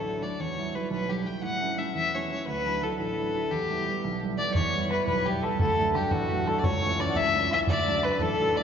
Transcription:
0.00 0.21 A1 medium
0.00 0.24 A4 loud
0.05 0.21 F#3 soft
0.05 0.21 A3 soft
0.05 0.21 D4 soft
0.22 0.35 F#3 soft
0.22 0.35 A3 soft
0.22 0.36 D4 soft
0.22 0.42 D5 medium
0.40 0.73 E2 medium
0.40 0.77 C#5 medium
0.58 0.73 F#3 soft
0.58 0.74 G3 soft
0.58 0.74 E4 medium
0.75 1.03 F#3 soft
0.75 1.03 G3 soft
0.75 1.03 E4 soft
0.75 0.91 B4 medium
0.91 1.25 B1 medium
0.91 1.11 B4 medium
1.09 1.24 F#3 soft
1.09 1.24 G3 soft
1.09 1.25 E4 soft
1.09 1.28 G4 medium
1.25 1.39 F#3 soft
1.25 1.39 G3 soft
1.25 1.39 E4 soft
1.25 1.43 G5 medium
1.42 1.77 A2 medium
1.42 1.80 F#5 loud
1.61 1.77 A3 soft
1.61 1.77 C#4 soft
1.61 1.77 E4 medium
1.78 2.07 A3 soft
1.78 2.07 C#4 soft
1.78 2.07 E4 soft
1.78 1.94 E5 medium
1.95 2.29 E2 medium
1.95 2.16 E5 loud
2.15 2.29 A3 soft
2.15 2.29 C#4 soft
2.15 2.29 E4 soft
2.15 2.31 C#5 medium
2.30 2.44 A3 soft
2.30 2.44 C#4 soft
2.30 2.44 E4 medium
2.30 2.46 C#5 medium
2.47 2.81 D2 medium
2.47 2.85 B4 loud
2.66 2.81 F#3 soft
2.66 2.82 D4 soft
2.66 2.82 E4 soft
2.83 3.11 F#3 medium
2.83 3.11 D4 soft
2.83 3.12 E4 medium
2.83 2.99 A4 medium
2.99 3.34 A1 medium
2.99 3.53 A4 loud
3.18 3.33 F#3 soft
3.18 3.33 D4 soft
3.18 3.34 E4 medium
3.34 3.48 F#3 soft
3.34 3.48 D4 soft
3.34 3.48 E4 soft
3.51 3.86 E2 medium
3.51 4.22 G4 loud
3.70 3.85 G3 soft
3.70 3.85 B3 soft
3.70 3.86 E4 medium
3.86 4.15 G3 soft
3.86 4.15 B3 soft
3.86 4.16 E4 soft
4.04 4.38 B1 medium
4.23 4.37 G3 soft
4.23 4.38 B3 soft
4.23 4.38 E4 medium
4.38 4.52 G3 soft
4.38 4.53 B3 soft
4.38 4.52 E4 soft
4.38 4.54 D5 loud
4.38 4.54 D5 medium
4.54 4.90 E2 medium
4.54 4.88 C#5 loud
4.54 4.89 C#5 medium
4.54 bodhran medium
4.75 4.90 G3 soft
4.75 4.91 B3 soft
4.75 4.91 E4 medium
4.91 5.20 G3 soft
4.91 5.20 B3 soft
4.91 5.20 E4 medium
4.91 5.06 B4 medium
4.91 bodhran medium
5.06 5.43 B1 medium
5.06 5.27 B4 loud
5.06 5.27 B4 medium
5.06 bodhran medium
5.26 5.42 G3 soft
5.26 5.42 B3 soft
5.26 5.42 E4 medium
5.26 5.44 G4 medium
5.26 bodhran soft
5.42 5.56 G3 soft
5.42 5.57 B3 soft
5.42 5.57 E4 soft
5.42 5.59 A4 medium
5.42 5.58 A4 medium
5.42 bodhran medium
5.59 5.94 D2 medium
5.59 5.96 A4 medium
5.59 5.93 A4 loud
5.59 bodhran medium
5.79 5.93 F#3 medium
5.79 5.94 A3 soft
5.79 5.94 D4 soft
5.94 6.23 F#3 soft
5.94 6.24 A3 soft
5.94 6.24 D4 medium
5.94 6.13 G4 medium
5.94 6.12 G4 medium
5.94 bodhran medium
6.11 6.46 A1 medium
6.11 6.49 F#4 loud
6.11 6.45 F#4 medium
6.11 bodhran medium
6.31 6.46 F#3 soft
6.31 6.46 A3 soft
6.31 6.47 D4 soft
6.31 bodhran soft
6.47 6.60 F#3 soft
6.47 6.60 A3 soft
6.47 6.61 D4 medium
6.47 6.64 A4 medium
6.47 6.60 A4 loud
6.47 bodhran medium
6.59 6.66 D5 medium
6.63 6.98 C#2 medium
6.63 6.82 C#5 medium
6.63 7.01 C#5 loud
6.63 bodhran loud
6.82 6.98 E3 medium
6.82 6.98 A3 soft
6.82 6.98 C#4 medium
6.82 6.98 C#5 medium
6.98 7.28 E3 medium
6.98 7.28 A3 soft
6.98 7.28 C#4 medium
6.98 7.09 D5 medium
6.98 7.18 D5 loud
6.98 bodhran medium
7.09 7.16 F#5 medium
7.15 7.50 C#2 medium
7.15 7.50 E5 medium
7.15 7.52 E5 loud
7.15 bodhran medium
7.35 7.50 E3 soft
7.35 7.50 A3 soft
7.35 7.50 C#4 medium
7.35 bodhran soft
7.51 7.64 E3 soft
7.51 7.65 A3 soft
7.51 7.65 C#4 medium
7.51 7.68 E5 medium
7.51 7.60 E5 loud
7.51 bodhran medium
7.67 8.02 D2 medium
7.67 8.05 D5 loud
7.67 8.06 D5 loud
7.67 bodhran medium
7.88 8.02 F#3 soft
7.88 8.02 A3 medium
7.88 8.03 D4 medium
8.03 8.32 F#3 soft
8.03 8.32 A3 soft
8.03 8.32 D4 soft
8.03 8.23 B4 loud
8.03 8.21 B4 medium
8.03 bodhran medium
8.12 bodhran medium
8.19 8.55 A1 medium
8.19 8.57 A4 medium
8.19 8.58 A4 loud
8.19 bodhran medium
8.39 8.55 F#3 soft
8.39 8.56 A3 soft
8.39 8.56 D4 medium
8.39 bodhran soft
8.56 8.63 F#3 soft
8.56 8.63 A3 soft
8.56 8.63 D4 medium
8.56 8.63 D5 medium
8.56 8.63 D5 loud
8.56 bodhran medium

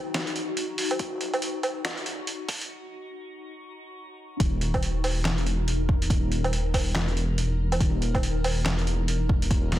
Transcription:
0.00 0.13 D#1 medium
0.00 4.39 D#4 medium
0.00 4.43 F#4 medium
0.14 0.98 E1 loud
0.14 snare loud
0.14 closed hi-hat medium
0.27 closed hi-hat soft
0.36 closed hi-hat soft
0.57 closed hi-hat medium
0.78 open hi-hat loud
0.91 closed hi-hat medium
0.91 low woodblock medium
0.99 1.83 D#1 loud
0.99 kick loud
0.99 closed hi-hat medium
1.21 closed hi-hat medium
1.34 closed hi-hat soft
1.34 low woodblock medium
1.42 closed hi-hat medium
1.63 closed hi-hat medium
1.63 low woodblock soft
1.85 2.68 E1 loud
1.85 snare loud
1.85 closed hi-hat medium
1.98 closed hi-hat soft
2.06 closed hi-hat medium
2.27 closed hi-hat medium
2.49 kick loud
2.49 open hi-hat loud
2.61 closed hi-hat medium
4.40 5.24 D#1 loud
4.40 9.79 D#4 medium
4.40 9.79 A#4 medium
4.40 kick loud
4.40 closed hi-hat medium
4.61 closed hi-hat medium
4.74 kick medium
4.74 closed hi-hat soft
4.74 low woodblock medium
4.83 closed hi-hat medium
5.04 open hi-hat medium
5.04 low woodblock soft
5.25 6.09 E1 loud
5.25 snare loud
5.25 clap medium
5.25 closed hi-hat medium
5.38 closed hi-hat soft
5.47 closed hi-hat medium
5.68 closed hi-hat medium
5.89 kick loud
6.02 closed hi-hat medium
6.10 6.94 D#1 loud
6.10 kick loud
6.10 closed hi-hat medium
6.32 closed hi-hat medium
6.44 closed hi-hat soft
6.44 low woodblock medium
6.53 closed hi-hat medium
6.74 kick medium
6.74 open hi-hat medium
6.74 low woodblock medium
6.95 7.79 E1 loud
6.95 snare loud
6.95 clap loud
6.95 closed hi-hat medium
7.08 closed hi-hat soft
7.17 closed hi-hat medium
7.38 closed hi-hat medium
7.72 closed hi-hat medium
7.72 low woodblock medium
7.80 8.64 D#1 loud
7.80 kick loud
7.80 closed hi-hat medium
8.02 closed hi-hat soft
8.15 kick medium
8.15 closed hi-hat soft
8.15 low woodblock medium
8.23 closed hi-hat medium
8.44 open hi-hat medium
8.44 low woodblock medium
8.66 9.49 E1 loud
8.66 snare loud
8.66 clap medium
8.66 closed hi-hat medium
8.79 closed hi-hat soft
8.87 closed hi-hat medium
9.08 closed hi-hat medium
9.29 kick loud
9.42 closed hi-hat medium
9.51 9.79 D#1 loud
9.51 kick loud
9.51 closed hi-hat medium
9.72 snare medium
9.72 closed hi-hat soft

